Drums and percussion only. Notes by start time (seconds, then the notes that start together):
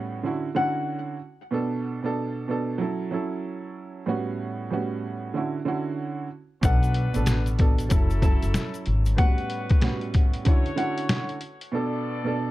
6.63 kick, closed hi-hat, shaker
6.83 closed hi-hat, shaker
6.94 closed hi-hat
7.14 closed hi-hat, shaker
7.26 snare, closed hi-hat, shaker
7.46 closed hi-hat, shaker
7.59 kick, closed hi-hat
7.79 closed hi-hat, shaker
7.90 kick, closed hi-hat, shaker
8.10 closed hi-hat, shaker
8.22 kick, closed hi-hat, shaker
8.42 closed hi-hat, shaker
8.54 snare, closed hi-hat, shaker
8.74 closed hi-hat, shaker
8.86 closed hi-hat
9.06 closed hi-hat, shaker
9.18 kick, closed hi-hat
9.38 closed hi-hat
9.50 closed hi-hat
9.70 kick, closed hi-hat
9.82 snare, closed hi-hat
10.01 closed hi-hat
10.14 kick, closed hi-hat
10.34 closed hi-hat
10.45 kick, closed hi-hat
10.66 closed hi-hat
10.78 closed hi-hat
10.98 closed hi-hat
11.09 snare, closed hi-hat
11.29 closed hi-hat
11.41 closed hi-hat
11.61 closed hi-hat